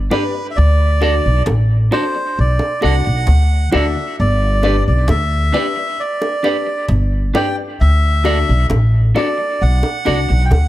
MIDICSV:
0, 0, Header, 1, 8, 480
1, 0, Start_track
1, 0, Key_signature, 1, "major"
1, 0, Tempo, 904977
1, 297, Time_signature, 4, 2, 24, 8
1, 5666, End_track
2, 0, Start_track
2, 0, Title_t, "Melodica"
2, 0, Program_c, 0, 22
2, 63, Note_on_c, 0, 71, 85
2, 250, Note_off_c, 0, 71, 0
2, 269, Note_on_c, 0, 76, 77
2, 299, Note_on_c, 0, 74, 120
2, 301, Note_off_c, 0, 76, 0
2, 757, Note_off_c, 0, 74, 0
2, 1023, Note_on_c, 0, 72, 92
2, 1267, Note_off_c, 0, 72, 0
2, 1273, Note_on_c, 0, 74, 102
2, 1489, Note_off_c, 0, 74, 0
2, 1509, Note_on_c, 0, 78, 118
2, 1962, Note_off_c, 0, 78, 0
2, 1991, Note_on_c, 0, 76, 93
2, 2208, Note_off_c, 0, 76, 0
2, 2228, Note_on_c, 0, 74, 112
2, 2563, Note_off_c, 0, 74, 0
2, 2587, Note_on_c, 0, 74, 84
2, 2693, Note_off_c, 0, 74, 0
2, 2703, Note_on_c, 0, 76, 110
2, 3182, Note_on_c, 0, 74, 96
2, 3193, Note_off_c, 0, 76, 0
2, 3637, Note_off_c, 0, 74, 0
2, 3903, Note_on_c, 0, 79, 102
2, 4009, Note_off_c, 0, 79, 0
2, 4141, Note_on_c, 0, 76, 106
2, 4596, Note_off_c, 0, 76, 0
2, 4866, Note_on_c, 0, 74, 101
2, 5101, Note_on_c, 0, 78, 118
2, 5107, Note_off_c, 0, 74, 0
2, 5545, Note_on_c, 0, 79, 68
2, 5554, Note_off_c, 0, 78, 0
2, 5577, Note_off_c, 0, 79, 0
2, 5581, Note_on_c, 0, 78, 89
2, 5666, Note_off_c, 0, 78, 0
2, 5666, End_track
3, 0, Start_track
3, 0, Title_t, "Upright piano"
3, 0, Program_c, 1, 0
3, 55, Note_on_c, 1, 62, 88
3, 58, Note_on_c, 1, 67, 86
3, 61, Note_on_c, 1, 71, 89
3, 62, Note_on_c, 1, 74, 106
3, 159, Note_off_c, 1, 62, 0
3, 160, Note_off_c, 1, 67, 0
3, 161, Note_off_c, 1, 71, 0
3, 162, Note_off_c, 1, 74, 0
3, 183, Note_on_c, 1, 71, 27
3, 183, Note_on_c, 1, 74, 27
3, 228, Note_off_c, 1, 71, 0
3, 228, Note_off_c, 1, 74, 0
3, 535, Note_on_c, 1, 62, 95
3, 537, Note_on_c, 1, 66, 88
3, 540, Note_on_c, 1, 69, 84
3, 541, Note_on_c, 1, 74, 103
3, 639, Note_off_c, 1, 62, 0
3, 640, Note_off_c, 1, 66, 0
3, 641, Note_off_c, 1, 69, 0
3, 641, Note_off_c, 1, 74, 0
3, 1015, Note_on_c, 1, 62, 85
3, 1018, Note_on_c, 1, 66, 76
3, 1020, Note_on_c, 1, 69, 86
3, 1021, Note_on_c, 1, 74, 96
3, 1119, Note_off_c, 1, 62, 0
3, 1120, Note_off_c, 1, 66, 0
3, 1121, Note_off_c, 1, 69, 0
3, 1121, Note_off_c, 1, 74, 0
3, 1143, Note_on_c, 1, 69, 26
3, 1143, Note_on_c, 1, 74, 26
3, 1188, Note_off_c, 1, 69, 0
3, 1188, Note_off_c, 1, 74, 0
3, 1380, Note_on_c, 1, 69, 24
3, 1381, Note_on_c, 1, 74, 26
3, 1427, Note_off_c, 1, 69, 0
3, 1427, Note_off_c, 1, 74, 0
3, 1494, Note_on_c, 1, 62, 85
3, 1496, Note_on_c, 1, 66, 80
3, 1498, Note_on_c, 1, 69, 83
3, 1501, Note_on_c, 1, 74, 100
3, 1598, Note_off_c, 1, 62, 0
3, 1599, Note_off_c, 1, 66, 0
3, 1600, Note_off_c, 1, 69, 0
3, 1601, Note_off_c, 1, 74, 0
3, 1976, Note_on_c, 1, 62, 95
3, 1977, Note_on_c, 1, 66, 87
3, 1980, Note_on_c, 1, 69, 89
3, 1982, Note_on_c, 1, 74, 102
3, 2079, Note_off_c, 1, 62, 0
3, 2079, Note_off_c, 1, 66, 0
3, 2081, Note_off_c, 1, 69, 0
3, 2082, Note_off_c, 1, 74, 0
3, 2100, Note_on_c, 1, 69, 24
3, 2100, Note_on_c, 1, 74, 28
3, 2147, Note_off_c, 1, 69, 0
3, 2147, Note_off_c, 1, 74, 0
3, 2455, Note_on_c, 1, 62, 99
3, 2457, Note_on_c, 1, 67, 87
3, 2459, Note_on_c, 1, 71, 89
3, 2461, Note_on_c, 1, 74, 111
3, 2558, Note_off_c, 1, 62, 0
3, 2559, Note_off_c, 1, 67, 0
3, 2560, Note_off_c, 1, 71, 0
3, 2561, Note_off_c, 1, 74, 0
3, 2932, Note_on_c, 1, 62, 90
3, 2934, Note_on_c, 1, 67, 81
3, 2937, Note_on_c, 1, 71, 79
3, 2938, Note_on_c, 1, 74, 93
3, 3036, Note_off_c, 1, 62, 0
3, 3038, Note_off_c, 1, 67, 0
3, 3039, Note_off_c, 1, 71, 0
3, 3039, Note_off_c, 1, 74, 0
3, 3059, Note_on_c, 1, 71, 27
3, 3059, Note_on_c, 1, 74, 29
3, 3106, Note_off_c, 1, 71, 0
3, 3106, Note_off_c, 1, 74, 0
3, 3299, Note_on_c, 1, 71, 25
3, 3299, Note_on_c, 1, 74, 27
3, 3346, Note_off_c, 1, 71, 0
3, 3346, Note_off_c, 1, 74, 0
3, 3413, Note_on_c, 1, 62, 82
3, 3416, Note_on_c, 1, 67, 82
3, 3418, Note_on_c, 1, 71, 75
3, 3420, Note_on_c, 1, 74, 95
3, 3517, Note_off_c, 1, 62, 0
3, 3518, Note_off_c, 1, 67, 0
3, 3519, Note_off_c, 1, 71, 0
3, 3520, Note_off_c, 1, 74, 0
3, 3892, Note_on_c, 1, 62, 89
3, 3894, Note_on_c, 1, 67, 88
3, 3897, Note_on_c, 1, 71, 81
3, 3899, Note_on_c, 1, 74, 108
3, 3996, Note_off_c, 1, 62, 0
3, 3997, Note_off_c, 1, 67, 0
3, 3998, Note_off_c, 1, 71, 0
3, 3999, Note_off_c, 1, 74, 0
3, 4017, Note_on_c, 1, 71, 26
3, 4018, Note_on_c, 1, 74, 28
3, 4064, Note_off_c, 1, 71, 0
3, 4064, Note_off_c, 1, 74, 0
3, 4370, Note_on_c, 1, 62, 89
3, 4372, Note_on_c, 1, 66, 91
3, 4374, Note_on_c, 1, 69, 85
3, 4377, Note_on_c, 1, 74, 103
3, 4474, Note_off_c, 1, 62, 0
3, 4475, Note_off_c, 1, 66, 0
3, 4476, Note_off_c, 1, 69, 0
3, 4478, Note_off_c, 1, 74, 0
3, 4851, Note_on_c, 1, 62, 83
3, 4853, Note_on_c, 1, 66, 80
3, 4855, Note_on_c, 1, 69, 81
3, 4857, Note_on_c, 1, 74, 93
3, 4955, Note_off_c, 1, 62, 0
3, 4956, Note_off_c, 1, 66, 0
3, 4957, Note_off_c, 1, 69, 0
3, 4958, Note_off_c, 1, 74, 0
3, 4977, Note_on_c, 1, 74, 28
3, 4978, Note_on_c, 1, 69, 27
3, 5024, Note_off_c, 1, 69, 0
3, 5024, Note_off_c, 1, 74, 0
3, 5217, Note_on_c, 1, 69, 22
3, 5218, Note_on_c, 1, 74, 26
3, 5264, Note_off_c, 1, 69, 0
3, 5264, Note_off_c, 1, 74, 0
3, 5331, Note_on_c, 1, 62, 89
3, 5333, Note_on_c, 1, 66, 76
3, 5336, Note_on_c, 1, 69, 81
3, 5337, Note_on_c, 1, 74, 95
3, 5435, Note_off_c, 1, 62, 0
3, 5436, Note_off_c, 1, 66, 0
3, 5437, Note_off_c, 1, 69, 0
3, 5438, Note_off_c, 1, 74, 0
3, 5666, End_track
4, 0, Start_track
4, 0, Title_t, "Clean electric guitar"
4, 0, Program_c, 2, 27
4, 55, Note_on_c, 2, 62, 75
4, 60, Note_on_c, 2, 67, 89
4, 63, Note_on_c, 2, 71, 82
4, 66, Note_on_c, 2, 74, 88
4, 119, Note_off_c, 2, 62, 0
4, 121, Note_off_c, 2, 67, 0
4, 122, Note_off_c, 2, 71, 0
4, 124, Note_off_c, 2, 74, 0
4, 534, Note_on_c, 2, 62, 77
4, 540, Note_on_c, 2, 66, 82
4, 543, Note_on_c, 2, 69, 93
4, 545, Note_on_c, 2, 74, 104
4, 598, Note_off_c, 2, 62, 0
4, 601, Note_off_c, 2, 66, 0
4, 603, Note_off_c, 2, 69, 0
4, 604, Note_off_c, 2, 74, 0
4, 1014, Note_on_c, 2, 62, 83
4, 1018, Note_on_c, 2, 66, 84
4, 1020, Note_on_c, 2, 69, 94
4, 1023, Note_on_c, 2, 74, 99
4, 1078, Note_off_c, 2, 62, 0
4, 1080, Note_off_c, 2, 66, 0
4, 1081, Note_off_c, 2, 69, 0
4, 1083, Note_off_c, 2, 74, 0
4, 1492, Note_on_c, 2, 62, 77
4, 1495, Note_on_c, 2, 66, 90
4, 1500, Note_on_c, 2, 69, 100
4, 1501, Note_on_c, 2, 74, 93
4, 1557, Note_off_c, 2, 62, 0
4, 1559, Note_off_c, 2, 66, 0
4, 1561, Note_off_c, 2, 69, 0
4, 1562, Note_off_c, 2, 74, 0
4, 1971, Note_on_c, 2, 62, 77
4, 1975, Note_on_c, 2, 66, 85
4, 1978, Note_on_c, 2, 69, 96
4, 1981, Note_on_c, 2, 74, 87
4, 2036, Note_off_c, 2, 62, 0
4, 2038, Note_off_c, 2, 66, 0
4, 2040, Note_off_c, 2, 69, 0
4, 2041, Note_off_c, 2, 74, 0
4, 2453, Note_on_c, 2, 62, 85
4, 2457, Note_on_c, 2, 67, 90
4, 2459, Note_on_c, 2, 71, 90
4, 2462, Note_on_c, 2, 74, 94
4, 2517, Note_off_c, 2, 62, 0
4, 2520, Note_off_c, 2, 67, 0
4, 2520, Note_off_c, 2, 71, 0
4, 2522, Note_off_c, 2, 74, 0
4, 2930, Note_on_c, 2, 62, 97
4, 2934, Note_on_c, 2, 67, 92
4, 2937, Note_on_c, 2, 71, 99
4, 2941, Note_on_c, 2, 74, 96
4, 2996, Note_off_c, 2, 62, 0
4, 2998, Note_off_c, 2, 67, 0
4, 2999, Note_off_c, 2, 71, 0
4, 3001, Note_off_c, 2, 74, 0
4, 3410, Note_on_c, 2, 62, 90
4, 3414, Note_on_c, 2, 67, 91
4, 3418, Note_on_c, 2, 71, 102
4, 3420, Note_on_c, 2, 74, 95
4, 3476, Note_off_c, 2, 62, 0
4, 3477, Note_off_c, 2, 67, 0
4, 3479, Note_off_c, 2, 71, 0
4, 3480, Note_off_c, 2, 74, 0
4, 3891, Note_on_c, 2, 62, 87
4, 3896, Note_on_c, 2, 67, 90
4, 3898, Note_on_c, 2, 71, 85
4, 3902, Note_on_c, 2, 74, 91
4, 3956, Note_off_c, 2, 62, 0
4, 3958, Note_off_c, 2, 67, 0
4, 3959, Note_off_c, 2, 71, 0
4, 3961, Note_off_c, 2, 74, 0
4, 4369, Note_on_c, 2, 62, 86
4, 4374, Note_on_c, 2, 66, 97
4, 4377, Note_on_c, 2, 69, 98
4, 4380, Note_on_c, 2, 74, 104
4, 4434, Note_off_c, 2, 62, 0
4, 4437, Note_off_c, 2, 66, 0
4, 4438, Note_off_c, 2, 69, 0
4, 4440, Note_off_c, 2, 74, 0
4, 4851, Note_on_c, 2, 62, 82
4, 4854, Note_on_c, 2, 66, 93
4, 4859, Note_on_c, 2, 69, 91
4, 4861, Note_on_c, 2, 74, 89
4, 4915, Note_off_c, 2, 62, 0
4, 4917, Note_off_c, 2, 66, 0
4, 4919, Note_off_c, 2, 69, 0
4, 4920, Note_off_c, 2, 74, 0
4, 5332, Note_on_c, 2, 62, 90
4, 5335, Note_on_c, 2, 66, 87
4, 5339, Note_on_c, 2, 69, 93
4, 5342, Note_on_c, 2, 74, 92
4, 5395, Note_off_c, 2, 62, 0
4, 5397, Note_off_c, 2, 66, 0
4, 5399, Note_off_c, 2, 69, 0
4, 5400, Note_off_c, 2, 74, 0
4, 5666, End_track
5, 0, Start_track
5, 0, Title_t, "Upright bass"
5, 0, Program_c, 3, 32
5, 307, Note_on_c, 3, 38, 109
5, 627, Note_off_c, 3, 38, 0
5, 667, Note_on_c, 3, 35, 97
5, 769, Note_off_c, 3, 35, 0
5, 781, Note_on_c, 3, 33, 91
5, 994, Note_off_c, 3, 33, 0
5, 1266, Note_on_c, 3, 35, 95
5, 1372, Note_off_c, 3, 35, 0
5, 1506, Note_on_c, 3, 36, 92
5, 1612, Note_off_c, 3, 36, 0
5, 1629, Note_on_c, 3, 35, 90
5, 1730, Note_off_c, 3, 35, 0
5, 1738, Note_on_c, 3, 38, 86
5, 1952, Note_off_c, 3, 38, 0
5, 1985, Note_on_c, 3, 38, 89
5, 2091, Note_off_c, 3, 38, 0
5, 2226, Note_on_c, 3, 31, 104
5, 2546, Note_off_c, 3, 31, 0
5, 2587, Note_on_c, 3, 35, 93
5, 2689, Note_off_c, 3, 35, 0
5, 2699, Note_on_c, 3, 38, 97
5, 2912, Note_off_c, 3, 38, 0
5, 3657, Note_on_c, 3, 31, 89
5, 3871, Note_off_c, 3, 31, 0
5, 4143, Note_on_c, 3, 38, 107
5, 4464, Note_off_c, 3, 38, 0
5, 4504, Note_on_c, 3, 35, 98
5, 4606, Note_off_c, 3, 35, 0
5, 4617, Note_on_c, 3, 33, 91
5, 4831, Note_off_c, 3, 33, 0
5, 5101, Note_on_c, 3, 35, 94
5, 5207, Note_off_c, 3, 35, 0
5, 5343, Note_on_c, 3, 36, 88
5, 5449, Note_off_c, 3, 36, 0
5, 5464, Note_on_c, 3, 35, 86
5, 5566, Note_off_c, 3, 35, 0
5, 5577, Note_on_c, 3, 38, 84
5, 5666, Note_off_c, 3, 38, 0
5, 5666, End_track
6, 0, Start_track
6, 0, Title_t, "Cajon"
6, 297, Note_on_c, 9, 38, 55
6, 350, Note_off_c, 9, 38, 0
6, 774, Note_on_c, 9, 38, 105
6, 776, Note_on_c, 9, 36, 113
6, 827, Note_off_c, 9, 38, 0
6, 829, Note_off_c, 9, 36, 0
6, 897, Note_on_c, 9, 38, 24
6, 950, Note_off_c, 9, 38, 0
6, 1494, Note_on_c, 9, 38, 38
6, 1547, Note_off_c, 9, 38, 0
6, 1733, Note_on_c, 9, 38, 98
6, 1734, Note_on_c, 9, 36, 114
6, 1786, Note_off_c, 9, 38, 0
6, 1787, Note_off_c, 9, 36, 0
6, 1859, Note_on_c, 9, 38, 30
6, 1912, Note_off_c, 9, 38, 0
6, 2215, Note_on_c, 9, 38, 58
6, 2269, Note_off_c, 9, 38, 0
6, 2693, Note_on_c, 9, 38, 111
6, 2694, Note_on_c, 9, 36, 114
6, 2746, Note_off_c, 9, 38, 0
6, 2747, Note_off_c, 9, 36, 0
6, 2816, Note_on_c, 9, 38, 24
6, 2869, Note_off_c, 9, 38, 0
6, 3173, Note_on_c, 9, 38, 46
6, 3226, Note_off_c, 9, 38, 0
6, 3294, Note_on_c, 9, 38, 25
6, 3347, Note_off_c, 9, 38, 0
6, 3410, Note_on_c, 9, 38, 40
6, 3463, Note_off_c, 9, 38, 0
6, 3652, Note_on_c, 9, 36, 114
6, 3652, Note_on_c, 9, 38, 98
6, 3705, Note_off_c, 9, 36, 0
6, 3705, Note_off_c, 9, 38, 0
6, 3777, Note_on_c, 9, 38, 31
6, 3830, Note_off_c, 9, 38, 0
6, 4132, Note_on_c, 9, 38, 57
6, 4185, Note_off_c, 9, 38, 0
6, 4250, Note_on_c, 9, 38, 25
6, 4304, Note_off_c, 9, 38, 0
6, 4613, Note_on_c, 9, 36, 110
6, 4613, Note_on_c, 9, 38, 102
6, 4666, Note_off_c, 9, 38, 0
6, 4667, Note_off_c, 9, 36, 0
6, 4738, Note_on_c, 9, 38, 26
6, 4791, Note_off_c, 9, 38, 0
6, 4975, Note_on_c, 9, 38, 20
6, 5028, Note_off_c, 9, 38, 0
6, 5096, Note_on_c, 9, 38, 49
6, 5149, Note_off_c, 9, 38, 0
6, 5573, Note_on_c, 9, 36, 112
6, 5575, Note_on_c, 9, 38, 54
6, 5626, Note_off_c, 9, 36, 0
6, 5628, Note_off_c, 9, 38, 0
6, 5666, End_track
7, 0, Start_track
7, 0, Title_t, "Muted clean electric guitar strokes"
7, 1139, Note_on_c, 9, 29, 46
7, 1192, Note_off_c, 9, 29, 0
7, 1617, Note_on_c, 9, 29, 41
7, 1670, Note_off_c, 9, 29, 0
7, 3055, Note_on_c, 9, 29, 48
7, 3108, Note_off_c, 9, 29, 0
7, 3535, Note_on_c, 9, 29, 45
7, 3588, Note_off_c, 9, 29, 0
7, 4975, Note_on_c, 9, 29, 42
7, 5028, Note_off_c, 9, 29, 0
7, 5457, Note_on_c, 9, 29, 49
7, 5510, Note_off_c, 9, 29, 0
7, 5666, End_track
8, 0, Start_track
8, 0, Title_t, "Drums"
8, 60, Note_on_c, 9, 60, 74
8, 60, Note_on_c, 9, 61, 80
8, 113, Note_off_c, 9, 60, 0
8, 113, Note_off_c, 9, 61, 0
8, 539, Note_on_c, 9, 60, 54
8, 592, Note_off_c, 9, 60, 0
8, 779, Note_on_c, 9, 60, 76
8, 832, Note_off_c, 9, 60, 0
8, 1019, Note_on_c, 9, 61, 72
8, 1072, Note_off_c, 9, 61, 0
8, 1375, Note_on_c, 9, 60, 68
8, 1428, Note_off_c, 9, 60, 0
8, 1496, Note_on_c, 9, 60, 51
8, 1549, Note_off_c, 9, 60, 0
8, 1976, Note_on_c, 9, 60, 73
8, 1976, Note_on_c, 9, 61, 74
8, 2029, Note_off_c, 9, 60, 0
8, 2029, Note_off_c, 9, 61, 0
8, 2456, Note_on_c, 9, 60, 56
8, 2509, Note_off_c, 9, 60, 0
8, 2699, Note_on_c, 9, 60, 75
8, 2753, Note_off_c, 9, 60, 0
8, 2939, Note_on_c, 9, 61, 71
8, 2992, Note_off_c, 9, 61, 0
8, 3297, Note_on_c, 9, 60, 71
8, 3350, Note_off_c, 9, 60, 0
8, 3416, Note_on_c, 9, 60, 54
8, 3469, Note_off_c, 9, 60, 0
8, 3897, Note_on_c, 9, 60, 77
8, 3897, Note_on_c, 9, 61, 79
8, 3950, Note_off_c, 9, 60, 0
8, 3950, Note_off_c, 9, 61, 0
8, 4375, Note_on_c, 9, 60, 55
8, 4428, Note_off_c, 9, 60, 0
8, 4618, Note_on_c, 9, 60, 77
8, 4671, Note_off_c, 9, 60, 0
8, 4858, Note_on_c, 9, 61, 74
8, 4911, Note_off_c, 9, 61, 0
8, 5214, Note_on_c, 9, 60, 71
8, 5267, Note_off_c, 9, 60, 0
8, 5336, Note_on_c, 9, 60, 48
8, 5389, Note_off_c, 9, 60, 0
8, 5577, Note_on_c, 9, 60, 69
8, 5630, Note_off_c, 9, 60, 0
8, 5666, End_track
0, 0, End_of_file